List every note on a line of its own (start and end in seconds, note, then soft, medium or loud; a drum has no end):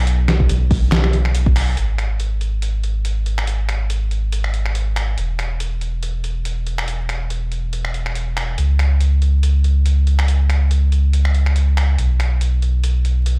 0.00 0.48 B1 medium
0.07 closed hi-hat medium
0.28 finger snap medium
0.28 snare medium
0.28 closed hi-hat medium
0.40 kick medium
0.49 0.91 B1 medium
0.49 closed hi-hat medium
0.71 kick loud
0.71 open hi-hat medium
0.92 1.76 B1 medium
0.92 snare loud
0.92 clap medium
0.92 closed hi-hat medium
1.04 finger snap soft
1.13 closed hi-hat medium
1.25 finger snap medium
1.35 closed hi-hat medium
1.46 kick loud
1.56 finger snap medium
1.56 open hi-hat loud
1.77 5.16 G#1 medium
1.77 closed hi-hat medium
1.98 finger snap soft
1.98 closed hi-hat soft
2.20 closed hi-hat medium
2.41 closed hi-hat soft
2.62 closed hi-hat medium
2.84 closed hi-hat medium
3.05 closed hi-hat medium
3.26 closed hi-hat medium
3.38 finger snap medium
3.47 closed hi-hat medium
3.69 finger snap medium
3.69 closed hi-hat soft
3.90 closed hi-hat medium
4.11 closed hi-hat soft
4.32 closed hi-hat medium
4.44 finger snap soft
4.54 closed hi-hat soft
4.66 finger snap soft
4.75 closed hi-hat medium
4.96 finger snap medium
4.96 closed hi-hat soft
5.18 8.56 E1 medium
5.18 closed hi-hat medium
5.39 finger snap medium
5.39 closed hi-hat soft
5.60 closed hi-hat medium
5.81 closed hi-hat soft
6.03 closed hi-hat medium
6.24 closed hi-hat soft
6.45 closed hi-hat medium
6.67 closed hi-hat soft
6.78 finger snap medium
6.88 closed hi-hat medium
7.09 finger snap medium
7.09 closed hi-hat soft
7.30 closed hi-hat medium
7.52 closed hi-hat soft
7.73 closed hi-hat medium
7.85 finger snap soft
7.94 closed hi-hat soft
8.06 finger snap soft
8.15 closed hi-hat medium
8.37 finger snap medium
8.37 closed hi-hat soft
8.58 11.97 C#2 medium
8.58 closed hi-hat medium
8.79 finger snap medium
8.79 closed hi-hat soft
9.01 closed hi-hat medium
9.22 closed hi-hat soft
9.43 closed hi-hat medium
9.64 closed hi-hat soft
9.86 closed hi-hat medium
10.07 closed hi-hat soft
10.19 finger snap medium
10.28 closed hi-hat medium
10.50 finger snap medium
10.50 closed hi-hat soft
10.71 closed hi-hat medium
10.92 closed hi-hat soft
11.13 closed hi-hat medium
11.25 finger snap medium
11.35 closed hi-hat soft
11.46 finger snap soft
11.56 closed hi-hat medium
11.77 finger snap medium
11.77 closed hi-hat soft
11.98 13.39 B1 medium
11.98 closed hi-hat medium
12.20 finger snap medium
12.20 closed hi-hat medium
12.41 closed hi-hat medium
12.62 closed hi-hat soft
12.84 closed hi-hat medium
13.05 closed hi-hat medium
13.26 closed hi-hat medium